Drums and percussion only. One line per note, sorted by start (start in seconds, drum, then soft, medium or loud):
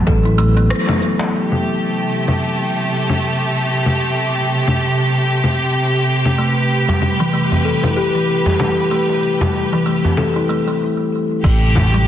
0.07 kick loud
0.07 closed hi-hat medium
0.07 darbuka ka medium
0.07 low conga medium
0.07 shaker soft
0.26 closed hi-hat soft
0.26 shaker soft
0.39 shaker medium
0.57 closed hi-hat soft
0.57 shaker soft
0.70 cross-stick loud
0.70 closed hi-hat medium
0.70 shaker soft
0.87 closed hi-hat soft
0.87 darbuka ka medium
0.87 low conga medium
1.02 shaker medium
1.19 closed hi-hat soft
1.19 darbuka tek medium
1.19 shaker soft
1.34 shaker soft
1.52 low conga medium
1.65 shaker medium
1.84 shaker soft
1.97 shaker soft
2.15 shaker soft
2.28 low conga medium
2.28 shaker medium
2.47 shaker soft
2.60 shaker soft
2.91 shaker medium
3.10 low conga medium
3.10 shaker soft
3.23 shaker soft
3.55 shaker medium
3.73 shaker soft
3.86 low conga medium
3.86 shaker soft
4.18 shaker medium
4.36 shaker soft
4.49 shaker soft
4.68 low conga medium
4.68 shaker soft
4.81 shaker medium
4.99 shaker soft
5.13 shaker soft
5.31 shaker soft
5.44 low conga medium
5.44 shaker medium
5.62 shaker soft
5.75 shaker soft
6.07 shaker medium
6.25 low conga medium
6.25 shaker soft
6.39 shaker soft
6.70 shaker medium
6.89 darbuka dum medium
6.89 shaker soft
7.02 low conga medium
7.02 shaker soft
7.20 shaker soft
7.34 shaker medium
7.52 darbuka dum medium
7.52 shaker soft
7.65 shaker soft
7.83 darbuka tek soft
7.83 low conga medium
7.97 shaker medium
8.15 shaker soft
8.28 shaker soft
8.46 darbuka dum medium
8.59 darbuka ka medium
8.59 darbuka tek medium
8.59 low conga medium
8.59 shaker medium
8.78 shaker soft
8.91 shaker soft
9.09 darbuka tek soft
9.23 shaker medium
9.41 darbuka ka soft
9.41 darbuka dum medium
9.41 low conga medium
9.41 shaker soft
9.54 darbuka ka soft
9.54 shaker soft
9.73 shaker soft
9.86 shaker medium
10.05 darbuka dum medium
10.05 shaker soft
10.17 darbuka ka medium
10.17 low conga medium
10.17 shaker soft
10.36 shaker soft
10.49 shaker medium
10.68 shaker soft
11.44 kick loud
11.44 closed hi-hat soft
11.44 crash loud
11.44 shaker soft
11.75 low conga medium
11.75 darbuka dum medium
11.75 shaker medium
11.94 closed hi-hat medium
11.94 shaker soft